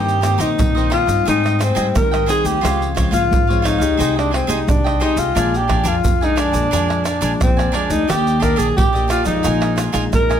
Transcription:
Already playing: G2 D#3 A#3 C4 D#4 G4 C5 D#5
0.08 pandeiro, shaker
0.21 D#3 A#3 C4 D#4 G4 C5 D#5, pandeiro, tamborim, shaker
0.38 A#1 D#4 G4 C5 D#5, pandeiro, shaker
0.58 A#1 G2, pandeiro, shaker, surdo
0.75 D#3 A#3 C4 G4 C5 D#5, pandeiro, shaker
0.90 D#4 F4 G4 C5 D#5, pandeiro, tamborim
1.06 G2 G3 C4 D#4 G4 C5 D#5, pandeiro, shaker
1.25 G#2 D#4 G#4 C5 D#5 G5, pandeiro, shaker, surdo
1.44 C5 D#5 G5, pandeiro, tamborim, shaker
1.59 C4 G#4 C5 D#5 G5, pandeiro, tamborim, shaker
1.75 G#2 G3 C4 D#4 G#4 C5 D#5 G5, pandeiro, shaker
1.95 G#2 D#3 A#4, pandeiro, tamborim, shaker, surdo
2.11 C5 D#5 G5, pandeiro, tamborim, shaker
2.26 G3 C4 D#4 G#4 C5 D#5 G5, pandeiro, shaker
2.44 D2 G4, pandeiro, shaker
2.61 C#2 C#3 F3 G#3 C4 F4 C5 C#5 F5, pandeiro, tamborim, shaker, surdo
2.82 pandeiro, shaker
2.95 F3 G#3 C4 F4 C5 C#5 F5, pandeiro, tamborim, shaker, surdo
3.11 G#1 F4 C5 C#5 F5, pandeiro, shaker
3.31 G#1 G#2, pandeiro, shaker, surdo
3.47 F3 G#3 C4 C5 C#5 F5, pandeiro, shaker
3.62 D#4 F4 C5 C#5 F5, pandeiro, tamborim, shaker
3.78 C#2 G#3 D#4 G4 C5 C#5 F5, pandeiro, shaker
3.97 C2 C3 G#4 C5 D#5 G5, pandeiro, shaker, surdo
4.15 D4 C5 D#5 G5, pandeiro, tamborim, shaker
4.31 C4 G#4 C5 D#5 G5, pandeiro, tamborim
4.47 C2 G#3 D#4 G4 G#4 C5 D#5 G5, pandeiro, shaker
4.67 C2 C3 D4, pandeiro, tamborim, shaker, surdo
4.84 C5 D#5 G5, pandeiro, tamborim, shaker
5.00 G#3 D#4 G4 G#4 C5 D#5 G5, pandeiro
5.16 C2 F4, pandeiro, shaker
5.35 A#1 A#2 F3 G#3 D4 A#4 D5 G#5, pandeiro, tamborim, shaker, surdo
5.54 G4, pandeiro, shaker
5.68 F3 G#3 D4 A#4 D5 G#5, pandeiro, tamborim, surdo
5.84 F2 D4 F4 A#4 D5 G#5, pandeiro, shaker
6.04 F2, pandeiro, shaker, surdo
6.21 F3 G#3 D4 D#4 A#4 D5 G#5, pandeiro, shaker
6.36 D4 A#4 D5 G#5, pandeiro, tamborim, shaker
6.51 A#1 F3 G#3 D4 A#4 D5 G#5, pandeiro, shaker
6.71 F2 A#2 F3 G#3 D4 A#4 D5 G#5, pandeiro, shaker, surdo
6.88 A#4 D5 G#5, pandeiro, tamborim, shaker
7.04 D4 A#4 D5 G#5, pandeiro, tamborim, shaker
7.21 A#1 F3 G#3 D4 A#4 D5 G#5, pandeiro, shaker
7.40 A#1 F2 C4, pandeiro, tamborim, shaker, surdo
7.57 A#4 D5 G#5, pandeiro, tamborim, shaker
7.72 F3 G#3 D4 A#4 D5 G#5, pandeiro
7.90 D2 D#4, pandeiro, shaker
8.07 D#2 D#3 A#3 D4 G4 D5 D#5, pandeiro, tamborim, shaker, surdo
8.27 pandeiro, shaker
8.40 A#3 D4 G4 A#4 D5 D#5, pandeiro, tamborim, shaker, surdo
8.56 A#1 D4 G4 G#4 D5 D#5, pandeiro, shaker
8.77 A#1 A#2 G4, pandeiro, shaker, surdo
8.93 A#3 D4 G4 D5 D#5, pandeiro, shaker
9.08 D4 F4 G4 D5 D#5, pandeiro, tamborim, shaker
9.24 F2 F3 G#3 D#4 G4 D5 D#5, pandeiro, shaker
9.43 A#1 A#2 F4 A#4 D#5 G#5, pandeiro, shaker, surdo
9.61 A#4 D#5 G#5, pandeiro, tamborim, shaker
9.76 F4 A#4 D#5 G#5, pandeiro, tamborim, shaker
9.92 A#1 F3 G#3 D#4 F4 A#4 D#5 G#5, pandeiro, shaker
10.13 A#1 F2 A#4, pandeiro, tamborim, shaker, surdo
10.29 A#4 D#5 G#5, pandeiro, tamborim, shaker

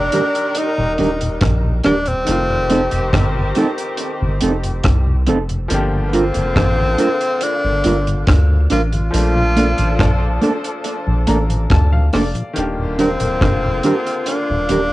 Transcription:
Already playing: D#3 G3 A#3 D4 G4 A#4 D5
0.12 D#3 G3 D4 G4 A#4, closed hi-hat
0.35 closed hi-hat
0.55 D#4, closed hi-hat
0.78 D#1 D#2 A#2
0.98 D#1 D#3 G3 D4 G4 A#4, closed hi-hat
1.21 D#2 A#2, closed hi-hat
1.41 A#1, kick, cross-stick, closed hi-hat
1.64 D#2 A#2
1.84 D#1 D#3 G3 D4 G4 A#4, cross-stick, closed hi-hat
2.06 D#2 A#2 C4, closed hi-hat
2.25 F1 D#3 A3 C4 G4, closed hi-hat
2.31 F4
2.49 F2 C3
2.70 F3 A3 C4 D#4 A4, closed hi-hat
2.91 F1 F2 C3, closed hi-hat
3.13 G1, kick, cross-stick, closed hi-hat
3.35 F2 C3
3.55 F3 A3 C4 D#4 A4, closed hi-hat
3.78 closed hi-hat
3.97 closed hi-hat
4.21 G1 F2 C3
4.41 F1 F3 A3 C4 D#4 A4, closed hi-hat
4.64 F2 C3, closed hi-hat
4.84 C2, kick, cross-stick, closed hi-hat
5.07 F2 C3
5.27 F1 F3 A3 C4 D#4 A4, closed hi-hat
5.49 F2 C3, closed hi-hat
5.68 G1 D3 F3 A#3 D4 F4, closed hi-hat
5.74 G4
5.93 G2 D3
6.08 B3
6.13 G3 A#3 C4 D4 F4 A#4, closed hi-hat
6.34 F1 G2 D3, closed hi-hat
6.56 A1, kick, cross-stick, closed hi-hat
6.78 G2 D3
6.98 G3 A#3 D4 F4 A#4, closed hi-hat
7.21 closed hi-hat
7.41 D4, closed hi-hat
7.64 G1 G2 D3
7.84 G1 G3 A#3 D4 F4 A#4, closed hi-hat
8.07 G2 D3, closed hi-hat
8.27 D2, kick, cross-stick, closed hi-hat
8.50 G2 D3
8.70 A1 G3 A#3 D4 F4 A#4, closed hi-hat
8.92 G2 D3 F4, closed hi-hat
9.10 A#1 F3 A#3 D4 A4, closed hi-hat
9.15 A3 D4
9.35 A#2 F3
9.56 A3 A#3 D4 A4, closed hi-hat
9.78 A1 A#2 F3, closed hi-hat
9.99 A#1, kick, cross-stick, closed hi-hat
10.21 A#2 F3
10.41 A3 A#3 D4 A4, closed hi-hat
10.64 closed hi-hat
10.84 closed hi-hat
11.07 A#1 A#2 F3
11.27 A1 A3 A#3 D4 A4 A#5, closed hi-hat
11.49 A#2 F3, closed hi-hat
11.70 D2 A5, kick, cross-stick, closed hi-hat
11.92 A#2 F3 F5
12.13 F1 A3 A#3 D4 A4 D5, cross-stick, open hi-hat
12.35 A#2 F3, closed hi-hat
12.53 D#1 D3 D#3 A#3 D4 F4, closed hi-hat
12.59 G4
12.78 D#2 A#2
12.98 D#3 G3 C4 D4 G4 A#4, closed hi-hat
13.20 D1 D#2 A#2, closed hi-hat
13.41 F1, kick, cross-stick, closed hi-hat
13.63 D#2 A#2
13.83 D#3 G3 D4 G4 A#4, closed hi-hat
14.07 closed hi-hat
14.26 D4, closed hi-hat
14.49 D#1 D#2 A#2
14.69 D#1 D#3 G3 D4 G4 A#4, closed hi-hat

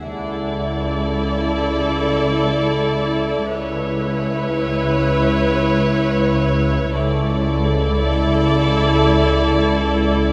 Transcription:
0.04 C#2 E4 A4 D5 E5
3.48 C#2 E4 B4 C#5 E5
6.94 C#2 E4 A4 D5 E5

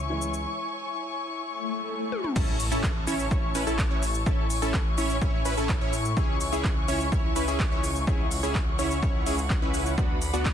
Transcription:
Already playing: C#2 E4 C#5 G#5 C#6
0.09 E3 G#3 C#4 E4
0.22 shaker
0.34 shaker
1.41 swell
2.12 high tom
2.24 mid tom
2.36 A1 C#4 E4 A4 C#5 A5 C#6, kick, crash, impact, shaker
2.60 open hi-hat, shaker
2.72 A1 C#4 E4 A4, shaker
2.84 kick, clap, shaker
3.07 A1 C#4 E4 C#5, open hi-hat, shaker
3.19 shaker
3.31 A1 C#4 E4 C#5, kick, shaker
3.55 A1 C#4 E4 B4, open hi-hat, shaker
3.67 A1 C#4 E4 A4, shaker
3.79 kick, clap, shaker
3.91 A1 C#4 E4 C#5
4.03 open hi-hat, shaker
4.15 shaker
4.26 C#4 E4 A4 G#5, kick, shaker
4.50 open hi-hat, shaker
4.62 A1 C#4 E4 A4, shaker
4.74 kick, clap, shaker
4.98 A1 C#4 E4 C#5, open hi-hat, shaker
5.10 shaker
5.22 C#4 C#5, kick, shaker
5.45 A1 C#4 E4 B4, open hi-hat, shaker
5.57 A1 C#4 E4 A4, shaker
5.69 kick, clap, shaker
5.81 A2 C#4 E4 C#5
5.93 open hi-hat, shaker
6.05 shaker
6.17 C#4 E4 G#4 G#5, kick, shaker
6.41 open hi-hat, shaker
6.52 C#2 C#4 E4 G#4, shaker
6.64 kick, clap, shaker
6.88 C#2 C#4 E4 C#5, open hi-hat, shaker
7.00 shaker
7.12 C#4 E4 C#5, kick, shaker
7.36 C#2 C#4 E4 B4, open hi-hat, shaker
7.48 C#2 C#4 E4 G#4, shaker
7.60 kick, clap, shaker
7.72 C#2 C#4 E4 C#5
7.84 open hi-hat, shaker
7.96 shaker
8.07 C#4 E4 G#4 F#5, kick, shaker
8.31 open hi-hat, shaker
8.43 C#2 C#4 E4 G#4, shaker
8.55 kick, clap, shaker
8.79 C#2 C#4 E4 C#5, open hi-hat, shaker
8.91 shaker
9.03 C#2 C#4 E4 C#5, kick, shaker
9.26 C#2 C#4 E4 G#4, open hi-hat, shaker
9.38 shaker
9.50 kick, clap, shaker
9.62 C#2 C#4 E4 B4
9.74 open hi-hat, shaker
9.86 shaker
9.98 B3 D4 F#4 B4 B5, kick, shaker
10.22 open hi-hat, shaker
10.34 D2 B3 D4 F#4, shaker
10.45 kick, clap, shaker

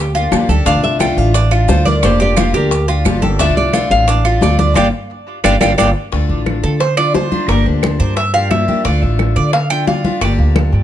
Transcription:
Already playing: D2 G4
0.15 A#3 D4 F4 G4, high bongo, high conga, maracas
0.32 E2 D3 F3 A#3 D4 G4, high bongo, low bongo, high conga, claves, maracas
0.49 D2 A#3 D4 G4 A4, high conga, maracas
0.65 D2 D3 A3 D4 F4 F5, high bongo, high conga, maracas
0.74 C2
0.83 E5, high bongo, high conga, maracas
0.99 D3 A3 D4 F4 G5, high bongo, high conga, claves, maracas
1.17 A1 F5, high bongo, high conga, maracas
1.34 D4, muted steel-string acoustic guitar stroke, high bongo, high conga, maracas
1.51 A3 D4 F4, high bongo, high conga, claves, maracas
1.68 D2 D3 A3 D4 F4 C5, high bongo, low bongo, high conga, maracas
1.85 A3 D4 F4 A#4 D5, high conga, maracas
2.03 G1 D3 F3 A#3 D4 G4 C5, high bongo, high conga, claves, maracas
2.11 F1
2.20 G4 D5, high bongo, high conga, maracas
2.37 D3 F3 A#3 D4 F4 G4, high bongo, high conga, claves, maracas
2.54 D2 G4 A#4, high bongo, high conga, maracas
2.71 muted steel-string acoustic guitar stroke, high bongo, high conga, maracas
2.88 A#3 D4 F4 G4, high bongo, high conga, maracas
3.05 G1 D3 F3 A#3 D4 G4, high bongo, low bongo, high conga, claves, maracas
3.22 A#3 D4 G4 A4, high conga, maracas
3.39 D2 D3 A3 D4 F4 E5, high bongo, high conga, maracas
3.49 C2
3.57 D5, high bongo, high conga, maracas
3.73 D3 A3 D4 F4, high bongo, high conga, claves, maracas
3.90 A1 F5, high bongo, high conga, maracas
4.07 D4, muted steel-string acoustic guitar stroke, high bongo, high conga, maracas
4.24 A3 D4 F4, high bongo, high conga, claves, maracas
4.41 D2 D3 A3 D4 F4 D5, high bongo, low bongo, high conga, maracas
4.59 A3 D4 F4 D5, high conga, maracas
4.75 G1 G3 A#3 D4 F4 G4 D5 F5 G5, high bongo, high conga, claves, maracas
5.44 G1 G3 A#3 D4 F4 G4 D5 F5 G5, high bongo, high conga, claves, maracas
5.61 G1 G3 A#3 D4 F4 G4 D5 F5 G5, high bongo, high conga, claves, maracas
5.78 G1 G3 A#3 D4 F4 G4 D5 F5 G5, high bongo, high conga, claves, maracas
6.12 D2 D3 A3 D4 F4, high bongo, high conga
6.29 A1, high bongo, high conga
6.46 high bongo, high conga, claves
6.63 D3 A4, high bongo, high conga
6.80 C5, muted steel-string acoustic guitar stroke, high bongo, high conga
6.97 A3 D4 F4 D5, high bongo, high conga, claves
7.14 A3 D4 F4 C5, high bongo, low bongo, high conga
7.31 A3 D4 F4, high conga
7.48 G1 D3 F3 A#3 D4 G4 A#4, high bongo, claves
7.66 D2, high bongo, high conga
7.83 high bongo, high conga, claves
8.00 G2 C5, high bongo, high conga
8.16 E5, muted steel-string acoustic guitar stroke, high bongo, high conga
8.34 F3 A#3 D4 G4 F5, high bongo, high conga
8.51 F3 A#3 D4 G4 E5, high bongo, low bongo, high conga, claves
8.68 F3 A#3 D4 G4, high conga
8.85 D2 D3 A3 D4 F4 D5, high bongo, high conga
9.02 A1, high bongo, high conga
9.19 high bongo, high conga, claves
9.36 D3 D5, high bongo, high conga
9.53 F5, muted steel-string acoustic guitar stroke, high bongo, high conga
9.70 A3 D4 F4 G5, high bongo, high conga, claves
9.87 D3 A3 D4 F4 F5, high bongo, low bongo, high conga
10.04 A3 D4 F4, high conga
10.21 G1 D3 F3 A#3 D4 G4 D5, high bongo, high conga, claves
10.39 D2, high bongo, high conga
10.56 high bongo, high conga, claves
10.72 G2, high bongo, high conga

